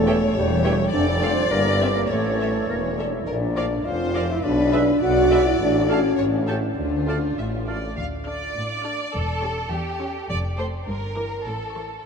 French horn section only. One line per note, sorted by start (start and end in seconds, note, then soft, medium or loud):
0.00 0.35 A3 medium
0.36 0.93 G3 medium
0.93 1.06 D4 medium
1.22 1.35 C4 medium
1.51 1.64 A#3 medium
1.80 1.87 C4 medium
1.95 2.09 A#3 medium
2.10 2.69 A3 medium
2.68 2.83 A#3 medium
2.85 2.91 C#4 medium
2.99 3.13 D4 medium
3.14 3.28 E4 medium
3.27 3.34 D4 medium
3.34 3.41 E4 medium
3.41 3.85 D4 medium
3.85 4.29 F4 medium
4.29 4.44 E4 medium
4.44 5.00 D4 medium
5.02 5.45 F#4 loud
5.47 5.60 E4 medium
5.61 5.89 D4 medium
5.90 6.47 C#4 medium
6.48 6.62 C#4 medium
6.78 7.36 D4 medium